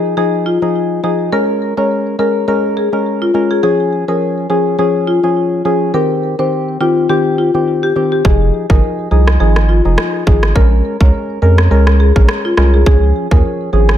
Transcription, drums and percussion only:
8.25 kick
8.70 kick
9.27 cross-stick
9.56 cross-stick
9.98 cross-stick
10.27 kick
10.43 cross-stick
10.56 kick
11.01 kick
11.58 cross-stick
11.87 cross-stick
12.16 kick
12.29 cross-stick
12.57 cross-stick
12.86 kick
13.31 kick
13.89 cross-stick

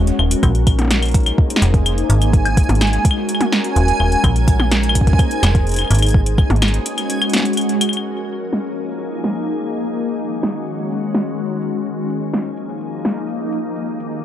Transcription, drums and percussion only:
0.07 closed hi-hat
0.19 claves
0.31 closed hi-hat
0.43 kick, closed hi-hat, claves
0.55 closed hi-hat
0.67 kick, closed hi-hat, claves
0.79 closed hi-hat, high tom
0.82 high tom
0.85 high tom
0.88 snare, closed hi-hat, high tom
0.91 high tom
0.97 high tom
1.00 closed hi-hat, high tom, claves
1.05 closed hi-hat
1.08 closed hi-hat
1.11 kick, closed hi-hat
1.14 closed hi-hat
1.20 closed hi-hat
1.23 closed hi-hat
1.26 closed hi-hat, claves
1.38 kick
1.50 closed hi-hat, shaker
1.56 snare
1.62 closed hi-hat
1.74 kick, closed hi-hat
1.86 closed hi-hat, claves
1.98 closed hi-hat
2.10 closed hi-hat
2.22 closed hi-hat, claves, shaker
2.33 kick, closed hi-hat
2.45 closed hi-hat, claves
2.57 kick, closed hi-hat, shaker
2.63 shaker
2.69 closed hi-hat, high tom, shaker
2.75 closed hi-hat, shaker
2.81 snare, closed hi-hat, claves
2.87 closed hi-hat
2.93 closed hi-hat
3.05 kick, closed hi-hat
3.11 claves
3.29 closed hi-hat
3.35 claves
3.41 closed hi-hat, high tom
3.52 snare
3.64 closed hi-hat
3.76 closed hi-hat
3.88 closed hi-hat
4.00 claves
4.12 closed hi-hat
4.24 kick, closed hi-hat, claves
4.36 closed hi-hat
4.48 kick, closed hi-hat
4.60 high tom, claves
4.72 snare, closed hi-hat
4.83 closed hi-hat
4.89 claves
4.95 kick, closed hi-hat
5.01 kick
5.07 kick, closed hi-hat
5.13 kick
5.19 kick, closed hi-hat, claves
5.31 closed hi-hat, shaker
5.43 snare, closed hi-hat, claves
5.55 kick, closed hi-hat
5.67 closed hi-hat
5.69 closed hi-hat
5.72 closed hi-hat
5.74 closed hi-hat
5.76 closed hi-hat
5.79 closed hi-hat, claves
5.82 claves
5.85 claves
5.88 closed hi-hat, claves
5.91 claves
5.93 closed hi-hat, claves
5.96 closed hi-hat, claves
5.99 closed hi-hat, claves
6.02 closed hi-hat, claves
6.08 closed hi-hat, shaker
6.10 kick, closed hi-hat
6.26 closed hi-hat
6.38 kick, claves, shaker
6.50 closed hi-hat, high tom
6.56 closed hi-hat
6.62 snare, closed hi-hat, claves
6.68 closed hi-hat
6.74 closed hi-hat
6.86 closed hi-hat
6.98 closed hi-hat, claves
7.10 closed hi-hat
7.22 closed hi-hat, claves
7.30 snare, closed hi-hat
7.33 snare, closed hi-hat
7.37 snare, closed hi-hat
7.42 snare, closed hi-hat
7.53 closed hi-hat
7.57 closed hi-hat, claves
7.61 closed hi-hat
7.69 closed hi-hat
7.81 closed hi-hat, claves
7.89 closed hi-hat, claves
7.97 claves
8.05 closed hi-hat
8.17 closed hi-hat
8.29 closed hi-hat
8.53 snare, closed hi-hat
8.59 closed hi-hat
8.65 closed hi-hat
8.70 closed hi-hat
8.76 closed hi-hat
9.00 closed hi-hat
9.12 closed hi-hat
9.24 snare, closed hi-hat
9.48 closed hi-hat
9.60 closed hi-hat
9.72 closed hi-hat
9.84 closed hi-hat
9.96 closed hi-hat
10.07 closed hi-hat
10.19 closed hi-hat
10.31 closed hi-hat
10.34 closed hi-hat
10.37 closed hi-hat
10.40 snare, closed hi-hat
10.43 closed hi-hat
10.55 closed hi-hat
10.61 closed hi-hat
10.67 closed hi-hat
10.79 closed hi-hat
10.91 closed hi-hat
11.03 closed hi-hat
11.14 snare, closed hi-hat
11.26 closed hi-hat
11.38 closed hi-hat
11.62 closed hi-hat
11.86 closed hi-hat
11.98 closed hi-hat
12.02 closed hi-hat
12.06 closed hi-hat
12.10 closed hi-hat
12.18 closed hi-hat
12.22 closed hi-hat
12.34 snare, closed hi-hat
12.45 closed hi-hat
12.57 closed hi-hat
12.69 closed hi-hat
12.81 closed hi-hat
13.05 snare, closed hi-hat
13.25 closed hi-hat
13.29 closed hi-hat
13.41 closed hi-hat
13.53 closed hi-hat
13.76 closed hi-hat
13.88 closed hi-hat
14.00 closed hi-hat
14.12 closed hi-hat

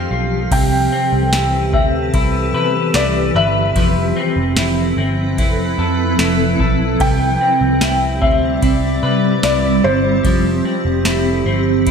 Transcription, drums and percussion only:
0.52 kick, crash, ride
1.33 snare, ride, tambourine
1.73 kick
2.14 kick, ride
2.94 snare, ride, tambourine
3.76 kick, ride
4.57 snare, ride, tambourine
5.38 kick, ride
6.19 snare, ride, tambourine
6.60 kick
7.00 kick, ride
7.81 snare, ride, tambourine
8.22 kick
8.63 kick, ride
9.43 snare, ride, tambourine
10.25 kick, ride
11.05 snare, ride, tambourine
11.87 kick, ride

